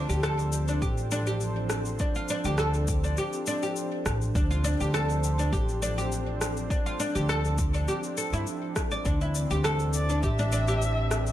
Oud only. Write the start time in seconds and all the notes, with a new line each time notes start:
0.10 G4
0.23 A4
0.69 D4
0.82 G4
1.12 D4
1.27 G4
2.00 D4
2.16 F4
2.30 D4
2.45 G4
2.59 A4
3.04 D4
3.18 G4
3.47 D4
3.63 G4
4.35 D4
4.51 F4
4.64 D4
4.80 G4
4.94 A4
5.39 D4
5.53 G4
5.82 D4
5.98 G4
6.71 D4
6.86 F4
7.00 D4
7.15 G4
7.29 A4
7.74 D4
7.88 G4
8.18 A4
8.33 E4
8.92 D5
9.06 D4
9.21 E4
9.51 G4
9.65 A4
10.10 D4
10.24 G4
10.39 D4
10.53 D4
10.68 G4